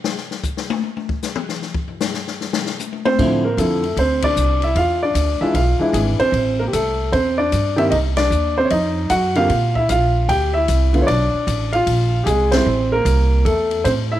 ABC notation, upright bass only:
X:1
M:4/4
L:1/8
Q:"Swing" 1/4=152
K:Dm
V:1 name="Upright bass" clef=bass
z8 | z8 | A,,2 F,,2 D,,2 C,,2 | E,,2 D,, z =B,,, z ^G,,, z |
A,,,2 C,,2 E,,2 G,,2 | C,,2 _E,,2 F,,2 _G,,2 | B,,2 B,,,2 D,,2 C,,2 | =B,,, z A,,,2 _B,,,2 C,,2 |
A,,,2 C,,2 E,,2 A,,2 |]